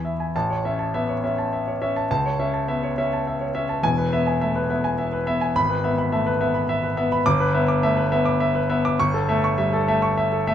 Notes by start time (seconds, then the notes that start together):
Already playing: E2 G#5 B5
0.05 E5
0.20 G#5
0.36 A1 A5
0.50 C#5
0.65 C#4 E5
0.79 A5
0.94 B3 E5
1.09 C#5
1.24 C#4 E5
1.38 A5
1.53 E5
1.68 C#5
1.82 C#4 E5
1.96 A5
2.11 C#2 A5
2.26 C#5
2.39 C#4 E5
2.54 A5
2.68 B3 E5
2.83 C#5
2.98 C#4 E5
3.13 A5
3.27 E5
3.41 C#5
3.55 C#4 E5
3.69 A5
3.82 E1 E2 G#5
3.98 B4
4.13 B3 E5
4.27 G#5
4.41 A3 E5
4.56 B4
4.70 B3 E5
4.84 G#5
4.98 E5
5.13 B4
5.27 B3 E5
5.41 G#5
5.55 G#1 B5
5.70 B4
5.84 B3 E5
5.98 B5
6.12 A3 E5
6.27 B4
6.41 B3 E5
6.54 B5
6.69 E5
6.83 B4
6.97 B3 E5
7.12 B5
7.26 G1 D6
7.40 B4
7.55 B3 E5
7.68 D6
7.83 A3 E5
7.97 B4
8.12 B3 E5
8.25 D6
8.40 E5
8.55 B4
8.70 B3 E5
8.85 D6
9.00 G1 C#6
9.14 A4
9.29 A3 E5
9.44 C#6
9.58 G3 E5
9.73 A4
9.88 A3 E5
10.02 C#6
10.17 E5
10.32 A4
10.47 A3 E5